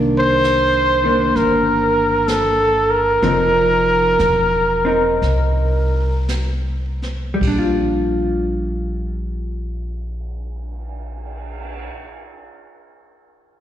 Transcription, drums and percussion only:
0, 0, Header, 1, 3, 480
1, 0, Start_track
1, 0, Key_signature, -2, "major"
1, 0, Tempo, 904977
1, 716, Tempo, 936037
1, 1675, Time_signature, 4, 2, 24, 8
1, 1676, Tempo, 1000000
1, 2636, Tempo, 1071429
1, 3116, Tempo, 1129944
1, 3596, Tempo, 1160542
1, 6151, End_track
2, 0, Start_track
2, 0, Title_t, "Cymbal swell"
2, 3913, Note_on_c, 9, 59, 37
2, 5415, Note_off_c, 9, 59, 0
2, 6151, End_track
3, 0, Start_track
3, 0, Title_t, "Drums"
3, 233, Note_on_c, 9, 38, 40
3, 233, Note_on_c, 9, 44, 48
3, 286, Note_off_c, 9, 38, 0
3, 286, Note_off_c, 9, 44, 0
3, 719, Note_on_c, 9, 25, 33
3, 719, Note_on_c, 9, 38, 27
3, 770, Note_off_c, 9, 38, 0
3, 1192, Note_on_c, 9, 38, 40
3, 1192, Note_on_c, 9, 44, 40
3, 1244, Note_off_c, 9, 38, 0
3, 1244, Note_off_c, 9, 44, 0
3, 1677, Note_off_c, 9, 25, 0
3, 1677, Note_on_c, 9, 25, 30
3, 1677, Note_on_c, 9, 38, 26
3, 1725, Note_off_c, 9, 38, 0
3, 2141, Note_on_c, 9, 38, 36
3, 2141, Note_on_c, 9, 44, 41
3, 2189, Note_off_c, 9, 38, 0
3, 2189, Note_off_c, 9, 44, 0
3, 2636, Note_off_c, 9, 25, 0
3, 2636, Note_on_c, 9, 25, 29
3, 2636, Note_on_c, 9, 38, 27
3, 2681, Note_off_c, 9, 38, 0
3, 3113, Note_on_c, 9, 38, 39
3, 3113, Note_on_c, 9, 44, 49
3, 3155, Note_off_c, 9, 38, 0
3, 3155, Note_off_c, 9, 44, 0
3, 3426, Note_on_c, 9, 38, 23
3, 3469, Note_off_c, 9, 38, 0
3, 3591, Note_on_c, 9, 36, 45
3, 3596, Note_on_c, 9, 49, 50
3, 3632, Note_off_c, 9, 36, 0
3, 3637, Note_off_c, 9, 49, 0
3, 3977, Note_off_c, 9, 25, 0
3, 6151, End_track
0, 0, End_of_file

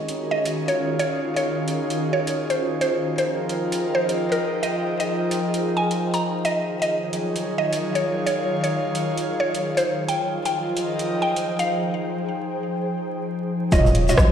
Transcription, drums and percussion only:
0, 0, Header, 1, 2, 480
1, 0, Start_track
1, 0, Tempo, 454545
1, 1051, Time_signature, 4, 2, 24, 8
1, 15120, End_track
2, 0, Start_track
2, 0, Title_t, "Drums"
2, 89, Note_on_c, 9, 42, 64
2, 195, Note_off_c, 9, 42, 0
2, 480, Note_on_c, 9, 42, 61
2, 586, Note_off_c, 9, 42, 0
2, 720, Note_on_c, 9, 42, 51
2, 825, Note_off_c, 9, 42, 0
2, 1050, Note_on_c, 9, 42, 64
2, 1155, Note_off_c, 9, 42, 0
2, 1441, Note_on_c, 9, 42, 61
2, 1546, Note_off_c, 9, 42, 0
2, 1770, Note_on_c, 9, 42, 60
2, 1876, Note_off_c, 9, 42, 0
2, 2009, Note_on_c, 9, 42, 61
2, 2115, Note_off_c, 9, 42, 0
2, 2400, Note_on_c, 9, 42, 60
2, 2505, Note_off_c, 9, 42, 0
2, 2641, Note_on_c, 9, 42, 50
2, 2747, Note_off_c, 9, 42, 0
2, 2969, Note_on_c, 9, 42, 63
2, 3075, Note_off_c, 9, 42, 0
2, 3359, Note_on_c, 9, 42, 61
2, 3465, Note_off_c, 9, 42, 0
2, 3689, Note_on_c, 9, 42, 61
2, 3795, Note_off_c, 9, 42, 0
2, 3930, Note_on_c, 9, 42, 62
2, 4036, Note_off_c, 9, 42, 0
2, 4320, Note_on_c, 9, 42, 60
2, 4426, Note_off_c, 9, 42, 0
2, 4561, Note_on_c, 9, 42, 48
2, 4667, Note_off_c, 9, 42, 0
2, 4890, Note_on_c, 9, 42, 63
2, 4995, Note_off_c, 9, 42, 0
2, 5279, Note_on_c, 9, 42, 62
2, 5385, Note_off_c, 9, 42, 0
2, 5609, Note_on_c, 9, 42, 62
2, 5715, Note_off_c, 9, 42, 0
2, 5850, Note_on_c, 9, 42, 62
2, 5955, Note_off_c, 9, 42, 0
2, 6240, Note_on_c, 9, 42, 60
2, 6346, Note_off_c, 9, 42, 0
2, 6480, Note_on_c, 9, 42, 49
2, 6586, Note_off_c, 9, 42, 0
2, 6809, Note_on_c, 9, 42, 65
2, 6915, Note_off_c, 9, 42, 0
2, 7200, Note_on_c, 9, 42, 65
2, 7305, Note_off_c, 9, 42, 0
2, 7529, Note_on_c, 9, 42, 65
2, 7635, Note_off_c, 9, 42, 0
2, 7769, Note_on_c, 9, 42, 64
2, 7874, Note_off_c, 9, 42, 0
2, 8159, Note_on_c, 9, 42, 63
2, 8264, Note_off_c, 9, 42, 0
2, 8399, Note_on_c, 9, 42, 51
2, 8505, Note_off_c, 9, 42, 0
2, 8730, Note_on_c, 9, 42, 67
2, 8835, Note_off_c, 9, 42, 0
2, 9121, Note_on_c, 9, 42, 64
2, 9227, Note_off_c, 9, 42, 0
2, 9450, Note_on_c, 9, 42, 66
2, 9556, Note_off_c, 9, 42, 0
2, 9689, Note_on_c, 9, 42, 66
2, 9795, Note_off_c, 9, 42, 0
2, 10080, Note_on_c, 9, 42, 66
2, 10186, Note_off_c, 9, 42, 0
2, 10320, Note_on_c, 9, 42, 53
2, 10426, Note_off_c, 9, 42, 0
2, 10650, Note_on_c, 9, 42, 68
2, 10755, Note_off_c, 9, 42, 0
2, 11039, Note_on_c, 9, 42, 67
2, 11145, Note_off_c, 9, 42, 0
2, 11369, Note_on_c, 9, 42, 67
2, 11474, Note_off_c, 9, 42, 0
2, 11609, Note_on_c, 9, 42, 66
2, 11715, Note_off_c, 9, 42, 0
2, 12001, Note_on_c, 9, 42, 67
2, 12106, Note_off_c, 9, 42, 0
2, 12241, Note_on_c, 9, 42, 54
2, 12347, Note_off_c, 9, 42, 0
2, 14489, Note_on_c, 9, 36, 120
2, 14489, Note_on_c, 9, 42, 70
2, 14493, Note_on_c, 9, 82, 68
2, 14595, Note_off_c, 9, 36, 0
2, 14595, Note_off_c, 9, 42, 0
2, 14598, Note_off_c, 9, 82, 0
2, 14641, Note_on_c, 9, 82, 43
2, 14729, Note_on_c, 9, 42, 108
2, 14746, Note_off_c, 9, 82, 0
2, 14835, Note_off_c, 9, 42, 0
2, 14875, Note_on_c, 9, 82, 74
2, 14880, Note_on_c, 9, 42, 66
2, 14968, Note_on_c, 9, 37, 123
2, 14969, Note_on_c, 9, 36, 118
2, 14975, Note_off_c, 9, 82, 0
2, 14975, Note_on_c, 9, 82, 66
2, 14986, Note_off_c, 9, 42, 0
2, 15074, Note_off_c, 9, 36, 0
2, 15074, Note_off_c, 9, 37, 0
2, 15081, Note_off_c, 9, 82, 0
2, 15120, End_track
0, 0, End_of_file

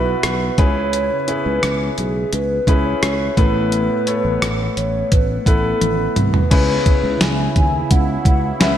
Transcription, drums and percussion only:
0, 0, Header, 1, 2, 480
1, 0, Start_track
1, 0, Tempo, 697674
1, 640, Time_signature, 4, 2, 24, 8
1, 6037, End_track
2, 0, Start_track
2, 0, Title_t, "Drums"
2, 160, Note_on_c, 9, 42, 92
2, 161, Note_on_c, 9, 37, 102
2, 229, Note_off_c, 9, 42, 0
2, 230, Note_off_c, 9, 37, 0
2, 399, Note_on_c, 9, 36, 93
2, 399, Note_on_c, 9, 42, 62
2, 468, Note_off_c, 9, 36, 0
2, 468, Note_off_c, 9, 42, 0
2, 641, Note_on_c, 9, 42, 74
2, 709, Note_off_c, 9, 42, 0
2, 880, Note_on_c, 9, 42, 66
2, 948, Note_off_c, 9, 42, 0
2, 1120, Note_on_c, 9, 42, 85
2, 1121, Note_on_c, 9, 37, 107
2, 1189, Note_off_c, 9, 37, 0
2, 1189, Note_off_c, 9, 42, 0
2, 1360, Note_on_c, 9, 42, 59
2, 1429, Note_off_c, 9, 42, 0
2, 1600, Note_on_c, 9, 42, 92
2, 1669, Note_off_c, 9, 42, 0
2, 1838, Note_on_c, 9, 36, 75
2, 1842, Note_on_c, 9, 42, 69
2, 1907, Note_off_c, 9, 36, 0
2, 1911, Note_off_c, 9, 42, 0
2, 2082, Note_on_c, 9, 42, 89
2, 2083, Note_on_c, 9, 37, 101
2, 2151, Note_off_c, 9, 37, 0
2, 2151, Note_off_c, 9, 42, 0
2, 2320, Note_on_c, 9, 36, 91
2, 2321, Note_on_c, 9, 42, 58
2, 2389, Note_off_c, 9, 36, 0
2, 2390, Note_off_c, 9, 42, 0
2, 2561, Note_on_c, 9, 42, 72
2, 2629, Note_off_c, 9, 42, 0
2, 2800, Note_on_c, 9, 42, 66
2, 2869, Note_off_c, 9, 42, 0
2, 3042, Note_on_c, 9, 37, 103
2, 3042, Note_on_c, 9, 42, 81
2, 3111, Note_off_c, 9, 37, 0
2, 3111, Note_off_c, 9, 42, 0
2, 3283, Note_on_c, 9, 42, 58
2, 3352, Note_off_c, 9, 42, 0
2, 3521, Note_on_c, 9, 42, 95
2, 3522, Note_on_c, 9, 36, 86
2, 3590, Note_off_c, 9, 42, 0
2, 3591, Note_off_c, 9, 36, 0
2, 3758, Note_on_c, 9, 36, 78
2, 3762, Note_on_c, 9, 42, 71
2, 3827, Note_off_c, 9, 36, 0
2, 3831, Note_off_c, 9, 42, 0
2, 4000, Note_on_c, 9, 48, 52
2, 4001, Note_on_c, 9, 42, 87
2, 4069, Note_off_c, 9, 48, 0
2, 4070, Note_off_c, 9, 42, 0
2, 4240, Note_on_c, 9, 42, 58
2, 4240, Note_on_c, 9, 45, 75
2, 4309, Note_off_c, 9, 42, 0
2, 4309, Note_off_c, 9, 45, 0
2, 4361, Note_on_c, 9, 43, 79
2, 4429, Note_off_c, 9, 43, 0
2, 4480, Note_on_c, 9, 36, 104
2, 4481, Note_on_c, 9, 42, 75
2, 4481, Note_on_c, 9, 49, 83
2, 4549, Note_off_c, 9, 36, 0
2, 4550, Note_off_c, 9, 42, 0
2, 4550, Note_off_c, 9, 49, 0
2, 4720, Note_on_c, 9, 36, 87
2, 4720, Note_on_c, 9, 42, 65
2, 4788, Note_off_c, 9, 36, 0
2, 4788, Note_off_c, 9, 42, 0
2, 4959, Note_on_c, 9, 38, 111
2, 4959, Note_on_c, 9, 42, 84
2, 5028, Note_off_c, 9, 38, 0
2, 5028, Note_off_c, 9, 42, 0
2, 5200, Note_on_c, 9, 36, 86
2, 5200, Note_on_c, 9, 42, 60
2, 5269, Note_off_c, 9, 36, 0
2, 5269, Note_off_c, 9, 42, 0
2, 5440, Note_on_c, 9, 42, 90
2, 5441, Note_on_c, 9, 36, 85
2, 5509, Note_off_c, 9, 42, 0
2, 5510, Note_off_c, 9, 36, 0
2, 5677, Note_on_c, 9, 36, 83
2, 5681, Note_on_c, 9, 42, 72
2, 5746, Note_off_c, 9, 36, 0
2, 5750, Note_off_c, 9, 42, 0
2, 5921, Note_on_c, 9, 38, 101
2, 5921, Note_on_c, 9, 42, 90
2, 5990, Note_off_c, 9, 38, 0
2, 5990, Note_off_c, 9, 42, 0
2, 6037, End_track
0, 0, End_of_file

